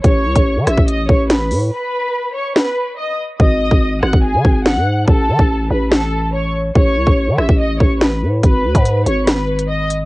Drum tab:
HH |x--x--x-x---x-o-|----------------|----------------|----------------|
SD |------r-----o---|--------o-------|------r-----o---|--------o-------|
BD |o--o---o--o-----|----------------|o--o---o--o-----|o--o------------|

HH |----------------|x--xx-x-x--x--x-|
SD |------r-----o---|--------o-------|
BD |o--o---o--o-----|o--o------------|